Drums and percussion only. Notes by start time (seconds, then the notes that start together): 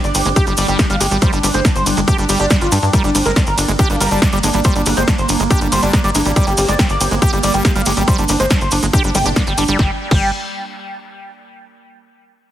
0.04 closed hi-hat, cabasa
0.15 open hi-hat, ride, cabasa
0.25 closed hi-hat, cabasa
0.36 kick, closed hi-hat, ride, cabasa
0.46 closed hi-hat, cabasa
0.57 open hi-hat, ride, cabasa
0.68 closed hi-hat, cabasa
0.79 kick, snare, closed hi-hat, ride, cabasa
0.90 closed hi-hat, cabasa
1.01 open hi-hat, ride, cabasa
1.11 closed hi-hat, cabasa
1.22 kick, closed hi-hat, ride, cabasa
1.33 closed hi-hat, cabasa
1.43 open hi-hat, ride, cabasa
1.54 closed hi-hat, cabasa
1.65 kick, snare, closed hi-hat, ride, cabasa
1.76 closed hi-hat, cabasa
1.86 open hi-hat, ride, cabasa
1.97 closed hi-hat, cabasa
2.08 kick, closed hi-hat, ride, cabasa
2.18 closed hi-hat, cabasa
2.29 open hi-hat, ride, cabasa
2.39 closed hi-hat, cabasa
2.50 kick, snare, closed hi-hat, ride, cabasa
2.61 closed hi-hat, cabasa
2.72 open hi-hat, ride, cabasa
2.83 closed hi-hat, cabasa
2.93 kick, closed hi-hat, ride, cabasa
3.04 closed hi-hat, cabasa
3.15 open hi-hat, ride, cabasa
3.25 closed hi-hat, cabasa
3.36 kick, snare, closed hi-hat, ride, cabasa
3.47 closed hi-hat, cabasa
3.58 open hi-hat, ride, cabasa
3.68 closed hi-hat, cabasa
3.79 kick, closed hi-hat, ride, cabasa
3.90 closed hi-hat, cabasa
4.01 open hi-hat, ride, cabasa
4.11 closed hi-hat, cabasa
4.22 kick, snare, closed hi-hat, ride, cabasa
4.33 closed hi-hat, cabasa
4.43 open hi-hat, ride, cabasa
4.53 closed hi-hat, cabasa
4.64 kick, closed hi-hat, ride, cabasa
4.76 closed hi-hat, cabasa
4.86 open hi-hat, ride, cabasa
4.97 closed hi-hat, cabasa
5.08 kick, snare, closed hi-hat, ride, cabasa
5.18 closed hi-hat, cabasa
5.29 open hi-hat, ride, cabasa
5.40 closed hi-hat, cabasa
5.51 kick, closed hi-hat, ride, cabasa
5.61 closed hi-hat, cabasa
5.72 open hi-hat, ride, cabasa
5.83 closed hi-hat, cabasa
5.93 kick, snare, closed hi-hat, ride, cabasa
6.04 closed hi-hat, cabasa
6.15 open hi-hat, ride, cabasa
6.26 closed hi-hat, cabasa
6.36 kick, closed hi-hat, ride, cabasa
6.47 closed hi-hat, cabasa
6.57 open hi-hat, ride, cabasa
6.68 closed hi-hat, cabasa
6.79 kick, snare, closed hi-hat, ride, cabasa
6.89 closed hi-hat, cabasa
7.01 open hi-hat, ride, cabasa
7.11 closed hi-hat, cabasa
7.22 kick, closed hi-hat, ride, cabasa
7.33 closed hi-hat, cabasa
7.43 open hi-hat, ride, cabasa
7.54 closed hi-hat, cabasa
7.65 kick, snare, closed hi-hat, ride, cabasa
7.76 closed hi-hat, cabasa
7.86 open hi-hat, ride, cabasa
7.97 closed hi-hat, cabasa
8.08 kick, closed hi-hat, ride, cabasa
8.18 closed hi-hat, cabasa
8.28 open hi-hat, ride, cabasa
8.40 closed hi-hat, cabasa
8.50 kick, snare, closed hi-hat, ride, cabasa
8.61 closed hi-hat, cabasa
8.71 open hi-hat, ride, cabasa
8.83 closed hi-hat, cabasa
8.93 kick, closed hi-hat, ride, cabasa
9.03 closed hi-hat, cabasa
9.15 open hi-hat, ride, cabasa
9.26 closed hi-hat, cabasa
9.36 kick, snare, closed hi-hat, ride, cabasa
9.47 closed hi-hat, cabasa
9.58 open hi-hat, ride, cabasa
9.68 closed hi-hat, cabasa
9.79 kick, snare
10.11 kick, crash